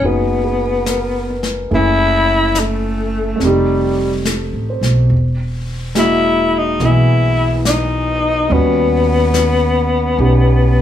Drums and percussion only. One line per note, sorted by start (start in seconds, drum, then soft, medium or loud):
0.01 brush sweep soft
0.86 snare soft
0.86 hi-hat pedal soft
1.43 snare soft
1.71 brush sweep soft
2.55 snare soft
2.55 hi-hat pedal soft
3.40 brush sweep soft
3.40 snare soft
4.25 snare soft
4.25 hi-hat pedal soft
4.83 snare soft
5.10 brush sweep soft
5.95 snare soft
5.95 hi-hat pedal soft
6.80 brush sweep soft
6.80 snare soft
7.65 snare soft
7.65 hi-hat pedal soft
8.49 brush sweep soft
9.34 snare soft
9.34 hi-hat pedal soft
10.18 brush sweep soft